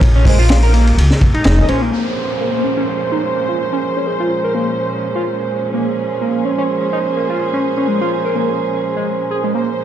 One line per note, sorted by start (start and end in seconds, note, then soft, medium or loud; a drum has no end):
0.00 0.94 A#1 loud
0.00 1.89 G#3 medium
0.00 1.89 A#3 medium
0.00 1.91 D#4 medium
0.00 kick loud
0.00 ride medium
0.15 0.25 C#4 medium
0.25 0.38 G#3 medium
0.25 0.38 C#4 medium
0.25 0.38 G#4 medium
0.25 0.38 A#4 medium
0.25 0.38 C5 medium
0.25 kick medium
0.25 open hi-hat medium
0.39 0.47 F4 loud
0.49 snare loud
0.49 ride medium
0.63 0.73 A#4 medium
0.63 ride soft
0.73 0.86 A#3 medium
0.73 ride medium
0.87 ride soft
0.97 1.09 C#2 medium
0.97 ride medium
1.11 snare medium
1.21 kick medium
1.21 ride medium
1.34 1.42 D#4 medium
1.34 muted upright bass stroke soft
1.34 ride soft
1.44 1.60 F1 medium
1.44 1.57 D#4 medium
1.44 snare loud
1.44 ride medium
1.58 1.67 C#2 medium
1.58 1.67 C#4 medium
1.58 1.67 G#4 medium
1.58 1.67 A#4 medium
1.58 1.67 D#5 loud
1.68 1.89 A#1 loud
1.68 1.81 C#4 medium
1.68 1.81 G#4 medium
1.68 1.81 A#4 medium
1.68 1.81 C5 medium
1.68 ride medium
1.82 1.92 A#3 medium
1.93 9.84 A#2 medium
1.93 9.84 F3 medium
1.93 9.84 G#3 medium
1.93 2.02 A#3 medium
1.93 5.71 C#4 medium
1.93 9.84 C#4 medium
1.93 5.71 G#4 medium
1.93 5.71 A#4 medium
1.93 5.71 C5 medium
1.93 5.72 C5 medium
1.93 downlifter medium
2.40 2.63 A#3 medium
2.64 2.70 C#4 medium
2.77 2.82 C#4 medium
3.12 3.17 D#4 medium
3.35 3.45 A#3 medium
3.49 3.59 F4 medium
3.72 3.77 C#4 medium
3.96 4.06 C#4 medium
4.07 4.19 G#3 medium
4.20 4.28 F4 medium
4.44 4.53 A#4 medium
4.55 4.67 A#3 medium
5.15 5.23 F4 medium
5.73 5.83 A#3 medium
5.73 9.52 C#4 medium
5.73 9.53 G#4 medium
5.73 9.52 G#4 medium
5.73 9.52 A#4 medium
5.73 9.52 C5 medium
6.21 6.44 A#3 medium
6.45 6.51 C#4 medium
6.58 6.63 C#4 loud
6.93 6.98 D#4 medium
7.16 7.26 A#3 medium
7.30 7.40 F4 medium
7.53 7.58 C#4 medium
7.77 7.87 C#4 medium
7.88 8.00 G#3 medium
8.01 8.09 F4 loud
8.25 8.35 A#4 medium
8.36 8.48 A#3 medium
8.96 9.06 G#3 medium
9.31 9.36 G#4 medium
9.44 9.51 G#3 medium
9.54 9.64 A#3 medium
9.54 9.84 C#4 medium
9.54 9.84 G#4 medium
9.54 9.84 A#4 medium
9.54 9.84 C5 medium